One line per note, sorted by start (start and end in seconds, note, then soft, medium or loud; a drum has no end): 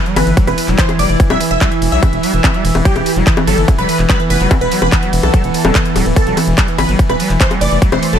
0.00 8.19 E3 medium
0.00 2.87 E4 medium
0.06 0.16 G3 loud
0.06 closed hi-hat soft
0.16 0.23 G1 loud
0.16 0.26 E3 loud
0.16 0.36 B4 loud
0.16 open hi-hat loud
0.16 ride medium
0.16 high bongo medium
0.27 0.34 G1 medium
0.27 0.39 E3 loud
0.27 closed hi-hat soft
0.37 0.47 G3 loud
0.37 kick loud
0.37 closed hi-hat medium
0.47 0.54 E1 medium
0.47 0.57 E3 loud
0.47 0.67 B4 loud
0.47 closed hi-hat soft
0.47 high bongo soft
0.58 0.70 E3 loud
0.58 open hi-hat loud
0.58 ride medium
0.68 0.75 E1 medium
0.68 0.78 G3 loud
0.68 clap soft
0.68 closed hi-hat soft
0.78 0.88 E3 loud
0.78 0.91 C5 medium
0.78 kick loud
0.78 clap loud
0.78 closed hi-hat medium
0.89 1.01 E3 loud
0.89 closed hi-hat soft
0.89 high bongo soft
0.99 1.06 F1 loud
0.99 1.09 G3 loud
0.99 1.18 D5 medium
0.99 open hi-hat loud
0.99 ride medium
1.10 1.16 F1 medium
1.10 1.19 E3 loud
1.10 closed hi-hat soft
1.20 1.32 E3 loud
1.20 kick loud
1.20 closed hi-hat medium
1.30 1.37 E1 medium
1.30 1.40 G3 loud
1.30 1.43 E5 medium
1.30 closed hi-hat soft
1.30 high bongo medium
1.41 1.50 E3 loud
1.41 open hi-hat loud
1.41 ride medium
1.51 1.58 E1 medium
1.51 1.63 E3 loud
1.51 1.77 E5 loud
1.51 closed hi-hat soft
1.61 1.71 G3 loud
1.61 kick loud
1.61 clap loud
1.61 closed hi-hat medium
1.61 high bongo soft
1.72 1.81 E3 loud
1.72 closed hi-hat soft
1.82 1.89 E1 loud
1.82 1.94 E3 loud
1.82 open hi-hat loud
1.82 ride medium
1.92 1.99 B1 medium
1.92 2.02 G3 loud
1.92 2.77 E5 loud
1.92 closed hi-hat soft
2.03 2.12 E3 loud
2.03 kick loud
2.03 closed hi-hat medium
2.03 high bongo soft
2.13 2.20 E1 medium
2.13 2.25 E3 loud
2.13 closed hi-hat soft
2.23 2.33 G3 loud
2.23 open hi-hat loud
2.23 ride medium
2.34 2.40 E1 medium
2.34 2.43 E3 loud
2.34 closed hi-hat soft
2.44 2.56 E3 loud
2.44 kick loud
2.44 clap loud
2.44 closed hi-hat medium
2.44 high bongo medium
2.54 2.64 G3 loud
2.54 closed hi-hat soft
2.65 2.72 E1 loud
2.65 2.74 E3 loud
2.65 open hi-hat loud
2.65 ride medium
2.75 2.82 E1 medium
2.75 2.87 E3 loud
2.75 closed hi-hat soft
2.75 high bongo soft
2.85 2.95 G3 loud
2.85 6.19 B3 medium
2.85 3.11 G4 loud
2.85 kick loud
2.85 closed hi-hat medium
2.96 3.03 E1 medium
2.96 3.05 E3 loud
2.96 closed hi-hat soft
2.96 high bongo soft
3.06 3.18 E3 loud
3.06 open hi-hat loud
3.06 ride medium
3.16 3.23 E1 medium
3.16 3.26 G3 loud
3.16 closed hi-hat soft
3.27 3.36 E3 loud
3.27 kick loud
3.27 clap loud
3.27 closed hi-hat medium
3.37 3.49 E3 loud
3.37 closed hi-hat soft
3.37 high bongo medium
3.47 3.54 G1 loud
3.47 3.57 G3 loud
3.47 3.67 A4 medium
3.47 open hi-hat medium
3.47 ride medium
3.58 3.65 G1 medium
3.58 3.67 E3 loud
3.58 closed hi-hat soft
3.68 3.80 E3 loud
3.68 kick loud
3.68 closed hi-hat medium
3.68 high bongo soft
3.79 3.85 E1 medium
3.79 3.88 G3 loud
3.79 3.98 B4 medium
3.79 closed hi-hat soft
3.89 3.99 E3 loud
3.89 open hi-hat loud
3.89 ride medium
3.99 4.06 E1 medium
3.99 4.11 E3 loud
3.99 clap soft
4.10 4.19 G3 loud
4.10 4.22 B4 medium
4.10 kick loud
4.10 clap loud
4.10 closed hi-hat medium
4.10 high bongo soft
4.20 4.30 E3 loud
4.20 closed hi-hat soft
4.30 4.37 F1 loud
4.30 4.42 E3 loud
4.30 4.49 B4 loud
4.30 open hi-hat medium
4.30 ride medium
4.41 4.47 F1 medium
4.41 4.50 G3 loud
4.41 closed hi-hat soft
4.51 4.61 E3 loud
4.51 kick loud
4.51 closed hi-hat medium
4.51 high bongo medium
4.61 4.68 E1 medium
4.61 4.73 E3 loud
4.61 4.74 B4 medium
4.61 closed hi-hat soft
4.72 4.81 G3 loud
4.72 open hi-hat loud
4.72 ride medium
4.82 4.89 E1 medium
4.82 4.92 E3 loud
4.82 5.08 B4 loud
4.82 closed hi-hat soft
4.82 high bongo soft
4.92 5.04 E3 loud
4.92 kick loud
4.92 clap loud
4.92 closed hi-hat medium
5.03 5.12 G3 loud
5.03 closed hi-hat soft
5.13 5.20 E1 loud
5.13 5.23 E3 loud
5.13 open hi-hat medium
5.13 ride medium
5.23 5.30 B1 medium
5.23 5.35 E3 loud
5.23 6.08 A4 loud
5.23 closed hi-hat soft
5.23 high bongo soft
5.34 5.43 G3 loud
5.34 kick loud
5.34 closed hi-hat medium
5.44 5.51 E1 medium
5.44 5.54 E3 loud
5.44 closed hi-hat soft
5.54 5.66 E3 loud
5.54 open hi-hat loud
5.54 ride medium
5.65 5.72 E1 medium
5.65 5.74 G3 loud
5.65 high bongo medium
5.75 5.85 E3 loud
5.75 kick loud
5.75 clap loud
5.75 closed hi-hat medium
5.85 5.97 E3 loud
5.85 closed hi-hat soft
5.96 6.03 D1 loud
5.96 6.05 G3 loud
5.96 open hi-hat medium
5.96 ride medium
5.96 high bongo soft
6.06 6.13 D1 medium
6.06 6.16 E3 loud
6.06 closed hi-hat soft
6.16 6.28 E3 loud
6.16 8.19 A3 medium
6.16 6.42 A4 loud
6.16 kick loud
6.16 closed hi-hat loud
6.27 6.34 E1 medium
6.27 6.36 G3 loud
6.27 closed hi-hat soft
6.37 6.47 E3 loud
6.37 open hi-hat loud
6.37 ride medium
6.37 high bongo soft
6.47 6.54 E1 medium
6.47 6.59 E3 loud
6.47 closed hi-hat soft
6.58 6.68 G3 loud
6.58 kick loud
6.58 clap loud
6.58 closed hi-hat medium
6.68 6.78 E3 loud
6.68 closed hi-hat soft
6.78 6.85 G1 loud
6.78 6.90 E3 loud
6.78 6.98 B4 medium
6.78 open hi-hat medium
6.78 ride medium
6.78 high bongo medium
6.89 6.96 G1 medium
6.89 6.99 G3 loud
6.89 closed hi-hat soft
6.99 7.09 E3 loud
6.99 kick loud
6.99 closed hi-hat loud
7.09 7.16 E1 medium
7.09 7.21 E3 loud
7.09 7.29 B4 loud
7.09 closed hi-hat soft
7.09 high bongo soft
7.20 7.30 G3 loud
7.20 open hi-hat loud
7.20 ride medium
7.30 7.37 E1 medium
7.30 7.40 E3 loud
7.30 clap soft
7.30 closed hi-hat soft
7.41 7.52 E3 loud
7.41 7.53 C5 medium
7.41 kick loud
7.41 clap loud
7.41 closed hi-hat loud
7.51 7.61 G3 loud
7.51 closed hi-hat soft
7.51 high bongo soft
7.61 7.68 F1 loud
7.61 7.71 E3 loud
7.61 7.80 D5 loud
7.61 open hi-hat medium
7.61 ride medium
7.72 7.78 F1 medium
7.72 7.83 E3 loud
7.72 closed hi-hat soft
7.82 7.92 G3 loud
7.82 kick loud
7.82 closed hi-hat loud
7.92 7.99 E1 medium
7.92 8.02 E3 loud
7.92 8.05 C5 medium
7.92 closed hi-hat soft
7.92 high bongo medium
8.03 8.14 E3 loud
8.03 open hi-hat loud
8.03 ride medium
8.13 8.19 E1 medium
8.13 8.19 G3 loud
8.13 8.19 A4 loud
8.13 closed hi-hat soft